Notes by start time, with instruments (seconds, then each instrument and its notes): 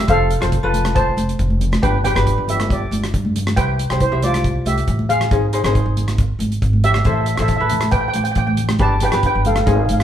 0.07 upright bass F1, ukulele F4 A4 C5, steel pan A4 F5, kick, closed hi-hat, low conga
0.31 closed hi-hat
0.41 upright bass F1, ukulele F4 A4 C5, cross-stick, closed hi-hat
0.52 kick, closed hi-hat
0.63 upright bass F1, ukulele F4 A4 B4
0.74 closed hi-hat, high conga, low conga
0.85 cross-stick, closed hi-hat, high conga
0.95 steel pan C5 A5, kick, closed hi-hat
1.17 upright bass F1, closed hi-hat, high conga
1.29 closed hi-hat
1.39 upright bass F1, kick, closed hi-hat
1.50 high conga
1.61 closed hi-hat, low conga
1.72 cross-stick, closed hi-hat, high conga
1.82 upright bass G1, ukulele D4 G4 B4, steel pan B4 G5, kick, closed hi-hat, low conga
2.04 ukulele D4 G4 B4, steel pan B4 G5, closed hi-hat, low conga
2.15 upright bass G1, ukulele D4 G4 B4, cross-stick, closed hi-hat
2.27 kick, closed hi-hat
2.38 upright bass G1
2.48 steel pan G4 E5, closed hi-hat, low conga
2.59 cross-stick, closed hi-hat, high conga
2.70 steel pan G4 D5, kick, closed hi-hat
2.91 upright bass G1, closed hi-hat, high conga
3.04 cross-stick, closed hi-hat
3.14 upright bass G2, kick, closed hi-hat
3.25 high conga
3.36 closed hi-hat, low conga
3.47 cross-stick, closed hi-hat, high conga
3.56 upright bass C2, ukulele E4 G4 C5, steel pan B4 G5, kick, closed hi-hat, low conga
3.79 closed hi-hat
3.90 upright bass C2, ukulele E4 G4 C5, cross-stick, closed hi-hat
4.00 steel pan E4 C5, kick, closed hi-hat
4.12 upright bass C2, ukulele G4 C5 E5
4.22 steel pan F4 D5, closed hi-hat, high conga, low conga
4.34 cross-stick, closed hi-hat, high conga
4.44 kick, closed hi-hat
4.65 upright bass C2, steel pan G4 E5, closed hi-hat, high conga
4.78 closed hi-hat
4.88 upright bass A1, kick, closed hi-hat
4.99 high conga
5.09 steel pan G#4 F5, closed hi-hat, low conga
5.21 cross-stick, closed hi-hat
5.31 upright bass G#1, ukulele D#4 G#4 C5, kick, closed hi-hat, low conga
5.53 ukulele D#4 G#4 C5, closed hi-hat
5.64 upright bass G#1, ukulele D#4 G#4 C5, cross-stick, closed hi-hat
5.75 kick, closed hi-hat
5.86 upright bass G#1
5.97 closed hi-hat, high conga, low conga
6.08 cross-stick, closed hi-hat, high conga
6.18 kick, closed hi-hat
6.39 upright bass G#1, closed hi-hat, high conga
6.52 closed hi-hat
6.62 upright bass G#1, kick, closed hi-hat
6.73 high conga
6.84 steel pan G4 E5, closed hi-hat, low conga
6.92 steel pan E5, cross-stick, closed hi-hat, high conga
6.99 steel pan E5
7.05 upright bass A1, ukulele E4 A4 C5, steel pan E5, kick, closed hi-hat, low conga
7.13 steel pan E5
7.21 steel pan E5
7.26 steel pan E5, closed hi-hat
7.36 upright bass A1, ukulele E4 A4 C5, steel pan E5, cross-stick, closed hi-hat
7.42 steel pan E5
7.48 steel pan E5, kick, closed hi-hat
7.57 upright bass A1, ukulele E4, steel pan E5
7.61 ukulele A4 B4
7.70 closed hi-hat, high conga, low conga
7.81 cross-stick, closed hi-hat, high conga
7.91 steel pan B4 G5, kick, closed hi-hat
8.01 steel pan G5
8.08 steel pan G5
8.14 upright bass A1, steel pan G5, closed hi-hat, high conga
8.24 steel pan G5, closed hi-hat
8.31 steel pan G5, closed hi-hat
8.36 upright bass A1, steel pan G5, kick
8.47 steel pan G5, high conga
8.57 closed hi-hat, low conga
8.69 cross-stick, closed hi-hat, high conga
8.79 upright bass G1, ukulele D4 G4 B4, steel pan D5 A5, kick, closed hi-hat, low conga
9.00 ukulele D4 G4 B4, steel pan B4, closed hi-hat, low conga
9.05 steel pan G5
9.12 upright bass G1, ukulele D4 G4 B4, cross-stick, closed hi-hat
9.23 steel pan B4 G5, kick, closed hi-hat
9.35 upright bass G1
9.45 steel pan A4 F5, closed hi-hat, high conga, low conga
9.56 steel pan F5, cross-stick, closed hi-hat, high conga
9.64 upright bass G#1, ukulele D#4 G#4 C5, steel pan F5, kick, closed hi-hat
9.70 steel pan F5
9.79 steel pan F5
9.85 steel pan F5
9.89 upright bass G#1, steel pan F5, closed hi-hat, high conga
9.99 steel pan F5, cross-stick, closed hi-hat